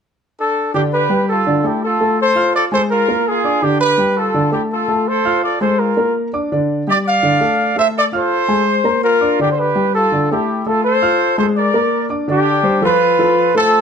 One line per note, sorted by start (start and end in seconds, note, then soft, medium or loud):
0.40 0.73 D4 medium
0.40 0.73 A4 medium
0.74 1.04 D3 medium
0.74 1.04 D4 medium
0.74 0.83 D4 medium
0.74 0.83 G4 medium
0.74 1.04 D5 medium
0.93 1.27 G4 medium
0.93 1.26 B4 medium
1.10 1.40 G3 medium
1.10 1.40 G4 medium
1.10 1.40 G5 medium
1.29 1.63 F4 medium
1.29 1.63 A4 medium
1.47 1.62 D3 medium
1.47 1.61 D4 medium
1.47 1.61 D5 medium
1.64 1.94 A3 medium
1.64 1.83 E4 medium
1.64 1.83 G4 medium
1.64 1.94 A4 medium
1.64 1.94 A5 medium
1.84 2.17 F4 medium
1.84 2.17 A4 medium
2.01 2.30 A3 medium
2.01 2.30 A4 medium
2.01 2.30 A5 medium
2.20 2.53 A4 medium
2.20 2.53 C5 loud
2.35 2.65 F4 medium
2.35 2.66 F5 medium
2.35 2.66 F6 medium
2.56 2.65 A4 medium
2.56 2.64 D5 loud
2.72 3.02 G#3 medium
2.72 3.02 G#4 medium
2.72 2.82 A4 medium
2.72 2.81 C5 loud
2.72 3.02 G#5 medium
2.91 3.25 F4 medium
2.91 3.25 A#4 loud
3.08 3.38 A#3 medium
3.08 3.38 A#4 medium
3.08 3.38 A#5 medium
3.28 3.64 F4 medium
3.28 3.63 G#4 loud
3.44 3.59 D4 medium
3.44 3.60 D5 medium
3.44 3.60 D6 medium
3.62 3.92 D3 medium
3.62 3.92 D4 medium
3.62 3.81 D4 medium
3.62 3.80 G4 loud
3.62 3.92 D5 medium
3.81 4.15 G4 medium
3.81 4.14 B4 loud
3.98 4.28 G3 medium
3.98 4.28 G4 medium
3.98 4.29 G5 medium
4.17 4.53 F4 medium
4.17 4.53 A4 loud
4.34 4.49 D3 medium
4.34 4.50 D4 medium
4.34 4.50 D5 medium
4.52 4.82 A3 medium
4.52 4.62 E4 medium
4.52 4.61 G4 medium
4.52 4.82 A4 medium
4.52 4.82 A5 medium
4.72 5.05 F4 medium
4.72 5.05 A4 medium
4.88 5.18 A3 medium
4.88 5.18 A4 medium
4.88 5.19 A5 medium
5.08 5.43 A4 medium
5.08 5.43 C5 loud
5.25 5.55 F4 medium
5.25 5.55 F5 medium
5.25 5.55 F6 medium
5.44 5.60 A4 medium
5.44 5.60 D5 medium
5.61 5.91 G#3 medium
5.61 5.91 G#4 medium
5.61 5.78 A4 medium
5.61 5.78 C5 medium
5.61 5.91 G#5 medium
5.80 6.16 F4 medium
5.80 6.16 A#4 medium
5.97 6.27 A#3 medium
5.97 6.27 A#4 medium
5.97 6.27 A#5 medium
6.33 6.48 D4 medium
6.33 6.48 D5 medium
6.33 6.48 D6 medium
6.52 6.81 D3 medium
6.52 6.81 D4 medium
6.52 6.81 D5 medium
6.87 7.17 G3 medium
6.87 7.17 G4 medium
6.87 6.96 G4 medium
6.87 6.98 D5 loud
6.87 7.17 G5 medium
7.05 7.73 D5 medium
7.05 7.75 F5 loud
7.23 7.38 D3 medium
7.23 7.38 D4 medium
7.23 7.39 D5 medium
7.41 7.71 A3 medium
7.41 7.71 A4 medium
7.41 7.71 A5 medium
7.76 8.06 A3 medium
7.76 8.07 A4 medium
7.76 7.86 C5 medium
7.76 7.87 E5 loud
7.76 8.07 A5 medium
7.97 8.04 A4 medium
7.97 8.05 D5 loud
8.12 8.42 F4 medium
8.12 8.64 A4 medium
8.12 9.01 C5 loud
8.12 8.43 F5 medium
8.12 8.43 F6 medium
8.48 8.78 G#3 medium
8.48 8.79 G#4 medium
8.48 8.79 G#5 medium
8.84 9.14 A#3 medium
8.84 9.15 A#4 medium
8.84 9.15 A#5 medium
9.04 9.38 F4 medium
9.04 9.38 A#4 loud
9.21 9.36 D4 medium
9.21 9.36 D5 medium
9.21 9.36 D6 medium
9.40 9.69 D3 medium
9.40 9.69 D4 medium
9.40 9.52 D4 medium
9.40 9.52 G4 loud
9.40 9.69 D5 medium
9.52 9.58 C5 medium
9.60 9.95 G4 medium
9.60 9.95 B4 loud
9.75 10.05 G3 medium
9.75 10.05 G4 medium
9.75 10.05 G5 medium
9.95 10.28 F4 medium
9.95 10.28 A4 medium
10.12 10.27 D3 medium
10.12 10.27 D4 medium
10.12 10.27 D5 medium
10.31 10.60 A3 medium
10.31 10.64 E4 medium
10.31 10.64 G4 medium
10.31 10.61 A4 medium
10.31 10.61 A5 medium
10.66 10.96 A3 medium
10.66 10.85 F4 medium
10.66 10.84 A4 medium
10.66 10.96 A4 medium
10.66 10.96 A5 medium
10.85 11.35 A4 medium
10.85 11.35 C5 loud
11.02 11.32 F4 medium
11.02 11.32 F5 medium
11.02 11.32 F6 medium
11.38 11.68 G#3 medium
11.38 11.68 G#4 medium
11.38 11.48 A4 medium
11.38 11.47 C5 medium
11.38 11.68 G#5 medium
11.57 12.07 A#4 medium
11.57 12.07 D5 medium
11.74 12.04 A#3 medium
11.74 12.04 A#4 medium
11.74 12.04 A#5 medium
12.09 12.25 D4 medium
12.09 12.25 D5 medium
12.09 12.25 D6 medium
12.28 12.58 D3 medium
12.28 12.58 D4 medium
12.28 12.79 D4 medium
12.28 12.80 G4 loud
12.28 12.58 D5 medium
12.63 12.79 G3 medium
12.63 12.79 G4 medium
12.63 12.79 C5 medium
12.81 13.11 F3 medium
12.81 13.12 F4 medium
12.81 13.51 F4 medium
12.81 13.12 A4 medium
12.81 13.52 B4 loud
13.19 13.48 F3 medium
13.19 13.49 F4 medium
13.19 13.49 A4 medium
13.55 13.81 A3 medium
13.55 13.81 F4 medium
13.55 13.81 A4 medium
13.55 13.81 A4 loud
13.55 13.81 C5 medium